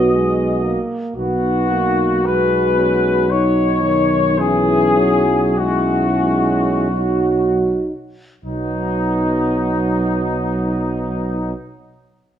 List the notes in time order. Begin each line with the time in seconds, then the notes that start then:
Already playing: B1 F#3 B3 F#4 D#5
0.13 G#3
0.65 A#3
1.15 B1 B3 D#4 F#4
1.71 A#3
2.24 G#3 B3 B4
2.78 C#4
3.30 F#3 D#4 C#5
3.84 D#3
4.38 E3 C#4 E4 G#4
4.97 F#3
5.57 G#3 C#4 E4 F#4
6.23 G#3
6.90 F#3 D#4 F#4
8.44 B1 F#3 B3 D#4